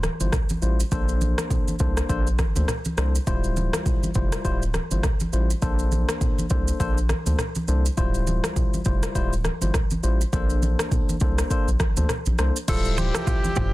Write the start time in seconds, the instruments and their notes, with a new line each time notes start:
0.03 cross-stick, high conga, shaker
0.20 sub bass G1, tine electric piano G3 E4 F4 C5, high conga, shaker
0.33 kick, cross-stick, low conga, shaker
0.49 high conga, shaker
0.62 sub bass A1, tine electric piano G3 E4 F4 C5, shaker
0.80 shaker
0.92 sub bass A#1, tine electric piano A#3 D4 A4 C5, kick, low conga, shaker
1.09 shaker
1.21 high conga, shaker
1.38 cross-stick, high conga, shaker
1.50 kick, low conga, shaker
1.68 high conga, shaker
1.79 sub bass C2, tine electric piano A#3 D4 A4 C5, kick, shaker
1.97 cross-stick, shaker
2.09 sub bass A#1, tine electric piano A#3 D4 A4 C5, kick, shaker
2.27 shaker
2.39 kick, cross-stick, high conga, shaker
2.56 sub bass D2, tine electric piano A#3 D4 A4 C5, high conga, shaker
2.68 cross-stick, low conga, shaker
2.85 high conga, shaker
2.97 sub bass C2, tine electric piano A#3 D4 A4 C5, cross-stick, shaker
3.15 shaker
3.27 sub bass D1, tine electric piano G3 E4 F4 C5, kick, low conga, shaker
3.44 shaker
3.57 high conga, shaker
3.73 cross-stick, high conga, shaker
3.86 kick, low conga, shaker
4.03 high conga, shaker
4.14 sub bass F1, tine electric piano G3 E4 F4 C5, kick, shaker
4.32 cross-stick, shaker
4.45 sub bass D1, tine electric piano G3 E4 F4 C5, kick, shaker
4.62 shaker
4.74 cross-stick, high conga, shaker
4.91 sub bass G1, tine electric piano G3 E4 F4 C5, high conga, shaker
5.03 kick, cross-stick, low conga, shaker
5.20 high conga, shaker
5.33 sub bass A1, tine electric piano G3 E4 F4 C5, shaker
5.51 shaker
5.62 sub bass A#1, tine electric piano A#3 D4 A4 C5, kick, low conga, shaker
5.79 shaker
5.92 high conga, shaker
6.09 cross-stick, high conga, shaker
6.21 kick, low conga, shaker
6.39 high conga, shaker
6.50 sub bass C2, tine electric piano A#3 D4 A4 C5, kick, shaker
6.68 shaker
6.80 sub bass A#1, tine electric piano A#3 D4 A4 C5, kick, shaker
6.98 shaker
7.09 cross-stick, high conga, shaker
7.26 sub bass D2, tine electric piano A#3 D4 A4 C5, high conga, shaker
7.39 cross-stick, low conga, shaker
7.55 high conga, shaker
7.68 sub bass C2, tine electric piano A#3 D4 A4 C5, shaker
7.86 shaker
7.97 sub bass D1, tine electric piano G3 E4 F4 C5, kick, low conga, shaker
8.14 shaker
8.27 high conga, shaker
8.44 cross-stick, high conga, shaker
8.56 kick, low conga, shaker
8.74 high conga, shaker
8.85 sub bass F1, tine electric piano G3 E4 F4 C5, kick, shaker
9.03 cross-stick, shaker
9.15 sub bass D1, tine electric piano G3 E4 F4 C5, kick, shaker
9.33 shaker
9.45 cross-stick, high conga, shaker
9.61 sub bass G1, tine electric piano G3 E4 F4 C5, high conga, shaker
9.74 kick, cross-stick, low conga, shaker
9.91 high conga, shaker
10.03 sub bass A1, tine electric piano G3 E4 F4 C5, shaker
10.21 shaker
10.33 sub bass A#1, tine electric piano A#3 D4 A4 C5, kick, low conga, shaker
10.50 shaker
10.62 high conga, shaker
10.79 cross-stick, high conga, shaker
10.92 kick, low conga, shaker
11.09 high conga, shaker
11.20 sub bass C2, tine electric piano A#3 D4 A4 C5, kick, shaker
11.38 cross-stick, shaker
11.50 tine electric piano A#3 D4 A4 C5, kick, shaker
11.68 sub bass A#1, shaker
11.80 kick, cross-stick, high conga, shaker
11.97 sub bass D2, tine electric piano A#3 D4 A4 C5, high conga, shaker
12.09 cross-stick, low conga, shaker
12.26 sub bass A#1, high conga, shaker
12.38 sub bass C2, tine electric piano A#3 D4 A4 C5, cross-stick, shaker
12.56 shaker
12.68 sub bass D1, analog synth pad C3 F3 G3 E5, tine electric piano G3 E4 F4 C5, alto saxophone A4, kick, crash, low conga, shaker
12.85 shaker
12.98 alto saxophone G4, clean electric guitar C5, high conga, shaker
13.15 clean electric guitar A4, cross-stick, high conga, shaker
13.27 clean electric guitar F4, kick, low conga, shaker
13.45 high conga, shaker
13.56 sub bass F1, tine electric piano G3 E4 F4 C5, clean electric guitar G4, kick, mid tom, high conga, shaker